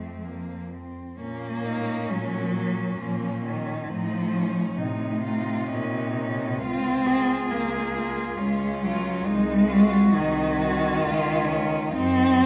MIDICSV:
0, 0, Header, 1, 5, 480
1, 0, Start_track
1, 0, Key_signature, -5, "minor"
1, 0, Tempo, 937500
1, 613, Time_signature, 3, 2, 24, 8
1, 1081, Tempo, 894188
1, 3001, Tempo, 928793
1, 3481, Tempo, 878477
1, 5401, Tempo, 906344
1, 6634, End_track
2, 0, Start_track
2, 0, Title_t, "Cello"
2, 0, Program_c, 0, 42
2, 0, Note_on_c, 0, 60, 42
2, 371, Note_off_c, 0, 60, 0
2, 606, Note_on_c, 0, 61, 59
2, 844, Note_on_c, 0, 63, 56
2, 852, Note_off_c, 0, 61, 0
2, 1076, Note_on_c, 0, 61, 62
2, 1084, Note_off_c, 0, 63, 0
2, 1318, Note_off_c, 0, 61, 0
2, 1321, Note_on_c, 0, 58, 59
2, 2025, Note_off_c, 0, 58, 0
2, 2039, Note_on_c, 0, 60, 58
2, 2277, Note_on_c, 0, 61, 62
2, 2285, Note_off_c, 0, 60, 0
2, 2516, Note_on_c, 0, 63, 64
2, 2524, Note_off_c, 0, 61, 0
2, 2753, Note_off_c, 0, 63, 0
2, 2756, Note_on_c, 0, 65, 66
2, 2996, Note_on_c, 0, 63, 70
2, 3004, Note_off_c, 0, 65, 0
2, 3473, Note_off_c, 0, 63, 0
2, 3476, Note_on_c, 0, 65, 68
2, 3726, Note_on_c, 0, 68, 75
2, 3734, Note_off_c, 0, 65, 0
2, 4450, Note_on_c, 0, 61, 72
2, 4458, Note_off_c, 0, 68, 0
2, 4919, Note_on_c, 0, 63, 74
2, 4927, Note_off_c, 0, 61, 0
2, 5160, Note_on_c, 0, 65, 74
2, 5168, Note_off_c, 0, 63, 0
2, 5398, Note_off_c, 0, 65, 0
2, 5401, Note_on_c, 0, 63, 68
2, 5633, Note_on_c, 0, 66, 75
2, 5641, Note_off_c, 0, 63, 0
2, 5869, Note_on_c, 0, 65, 84
2, 5877, Note_off_c, 0, 66, 0
2, 6110, Note_on_c, 0, 61, 81
2, 6118, Note_off_c, 0, 65, 0
2, 6350, Note_off_c, 0, 61, 0
2, 6353, Note_on_c, 0, 63, 78
2, 6599, Note_on_c, 0, 58, 73
2, 6607, Note_off_c, 0, 63, 0
2, 6634, Note_off_c, 0, 58, 0
2, 6634, End_track
3, 0, Start_track
3, 0, Title_t, "Cello"
3, 0, Program_c, 1, 42
3, 0, Note_on_c, 1, 53, 47
3, 348, Note_off_c, 1, 53, 0
3, 845, Note_on_c, 1, 61, 53
3, 1309, Note_off_c, 1, 61, 0
3, 1321, Note_on_c, 1, 61, 47
3, 1791, Note_off_c, 1, 61, 0
3, 1798, Note_on_c, 1, 61, 50
3, 2032, Note_off_c, 1, 61, 0
3, 2036, Note_on_c, 1, 63, 50
3, 2272, Note_off_c, 1, 63, 0
3, 2281, Note_on_c, 1, 63, 50
3, 2752, Note_off_c, 1, 63, 0
3, 2756, Note_on_c, 1, 63, 52
3, 2994, Note_off_c, 1, 63, 0
3, 2999, Note_on_c, 1, 61, 54
3, 3234, Note_off_c, 1, 61, 0
3, 3240, Note_on_c, 1, 61, 54
3, 3477, Note_off_c, 1, 61, 0
3, 3484, Note_on_c, 1, 65, 58
3, 3723, Note_off_c, 1, 65, 0
3, 3726, Note_on_c, 1, 65, 52
3, 4201, Note_off_c, 1, 65, 0
3, 4215, Note_on_c, 1, 65, 58
3, 4680, Note_off_c, 1, 65, 0
3, 4689, Note_on_c, 1, 65, 60
3, 4920, Note_off_c, 1, 65, 0
3, 5163, Note_on_c, 1, 66, 65
3, 5628, Note_off_c, 1, 66, 0
3, 5636, Note_on_c, 1, 66, 64
3, 5869, Note_off_c, 1, 66, 0
3, 5877, Note_on_c, 1, 65, 69
3, 6114, Note_off_c, 1, 65, 0
3, 6118, Note_on_c, 1, 65, 58
3, 6360, Note_off_c, 1, 65, 0
3, 6634, End_track
4, 0, Start_track
4, 0, Title_t, "Cello"
4, 0, Program_c, 2, 42
4, 0, Note_on_c, 2, 57, 45
4, 125, Note_on_c, 2, 58, 39
4, 133, Note_off_c, 2, 57, 0
4, 371, Note_off_c, 2, 58, 0
4, 379, Note_on_c, 2, 60, 46
4, 612, Note_off_c, 2, 60, 0
4, 618, Note_on_c, 2, 58, 85
4, 1078, Note_on_c, 2, 54, 89
4, 1086, Note_off_c, 2, 58, 0
4, 1561, Note_on_c, 2, 53, 67
4, 1569, Note_off_c, 2, 54, 0
4, 1794, Note_off_c, 2, 53, 0
4, 1797, Note_on_c, 2, 51, 72
4, 2037, Note_on_c, 2, 53, 98
4, 2045, Note_off_c, 2, 51, 0
4, 2516, Note_off_c, 2, 53, 0
4, 2519, Note_on_c, 2, 48, 84
4, 3480, Note_on_c, 2, 60, 113
4, 3488, Note_off_c, 2, 48, 0
4, 3966, Note_on_c, 2, 58, 83
4, 3974, Note_off_c, 2, 60, 0
4, 4450, Note_off_c, 2, 58, 0
4, 4452, Note_on_c, 2, 56, 88
4, 4688, Note_on_c, 2, 54, 93
4, 4696, Note_off_c, 2, 56, 0
4, 4926, Note_on_c, 2, 56, 116
4, 4934, Note_off_c, 2, 54, 0
4, 5407, Note_on_c, 2, 51, 110
4, 5415, Note_off_c, 2, 56, 0
4, 6362, Note_off_c, 2, 51, 0
4, 6366, Note_on_c, 2, 60, 127
4, 6634, Note_off_c, 2, 60, 0
4, 6634, End_track
5, 0, Start_track
5, 0, Title_t, "Cello"
5, 0, Program_c, 3, 42
5, 0, Note_on_c, 3, 41, 40
5, 488, Note_off_c, 3, 41, 0
5, 612, Note_on_c, 3, 46, 60
5, 1026, Note_off_c, 3, 46, 0
5, 1081, Note_on_c, 3, 46, 58
5, 1503, Note_off_c, 3, 46, 0
5, 1558, Note_on_c, 3, 46, 61
5, 1982, Note_off_c, 3, 46, 0
5, 2041, Note_on_c, 3, 45, 60
5, 2463, Note_off_c, 3, 45, 0
5, 2520, Note_on_c, 3, 45, 63
5, 2945, Note_off_c, 3, 45, 0
5, 3006, Note_on_c, 3, 46, 71
5, 3428, Note_off_c, 3, 46, 0
5, 3486, Note_on_c, 3, 37, 61
5, 3914, Note_off_c, 3, 37, 0
5, 3975, Note_on_c, 3, 37, 69
5, 4398, Note_off_c, 3, 37, 0
5, 4455, Note_on_c, 3, 37, 75
5, 4871, Note_off_c, 3, 37, 0
5, 4926, Note_on_c, 3, 36, 74
5, 5345, Note_off_c, 3, 36, 0
5, 5405, Note_on_c, 3, 36, 79
5, 5820, Note_off_c, 3, 36, 0
5, 5878, Note_on_c, 3, 37, 86
5, 6309, Note_off_c, 3, 37, 0
5, 6369, Note_on_c, 3, 42, 78
5, 6634, Note_off_c, 3, 42, 0
5, 6634, End_track
0, 0, End_of_file